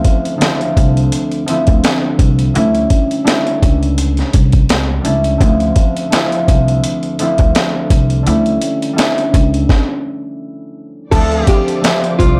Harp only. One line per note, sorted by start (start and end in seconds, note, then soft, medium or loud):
0.00 0.37 D2 medium
0.00 0.39 F3 medium
0.00 0.36 A3 medium
0.00 0.36 C4 medium
0.00 0.36 E4 medium
0.38 1.46 D2 medium
0.38 1.47 F3 medium
0.38 1.48 C4 medium
0.38 1.49 E4 loud
0.44 1.51 A3 medium
1.46 2.60 D2 medium
1.46 2.60 F3 medium
1.46 2.61 C4 medium
1.46 2.55 E4 loud
1.51 2.54 A3 medium
2.54 5.46 D3 medium
2.54 3.23 G3 medium
2.54 3.21 A3 medium
2.54 3.21 C#4 medium
2.54 3.21 E4 loud
3.24 5.01 G3 medium
3.24 5.04 A3 medium
3.24 5.03 C#4 medium
3.24 5.05 D4 medium
3.24 5.04 E4 loud
5.02 5.46 G3 medium
5.02 5.37 A3 medium
5.02 5.38 C#4 medium
5.02 5.38 E4 medium
5.06 5.37 D4 medium
5.38 6.11 D2 medium
5.38 6.11 F3 medium
5.38 6.07 A3 medium
5.38 6.07 C4 medium
5.44 6.07 E4 medium
6.10 7.19 D2 medium
6.10 7.19 F3 medium
6.10 7.18 A3 medium
6.10 7.20 C4 medium
6.15 7.22 E4 loud
7.19 8.31 D2 medium
7.19 8.31 F3 medium
7.19 8.29 A3 medium
7.19 8.32 C4 medium
7.19 8.26 E4 loud
8.23 11.17 D3 medium
8.23 8.93 G3 medium
8.23 8.93 C#4 medium
8.23 8.93 E4 loud
8.29 8.92 A3 medium
8.93 11.17 G3 medium
8.93 11.11 A3 medium
8.93 11.17 C#4 medium
8.93 11.12 E4 loud
8.98 11.78 D4 medium
11.11 11.82 D2 medium
11.11 11.82 F3 medium
11.11 11.78 A3 medium
11.11 11.79 C4 medium
11.11 11.79 E4 medium
11.81 12.40 D2 medium
11.81 12.40 F3 medium
11.81 12.40 A3 medium
11.81 12.40 C4 medium
11.87 12.40 E5 loud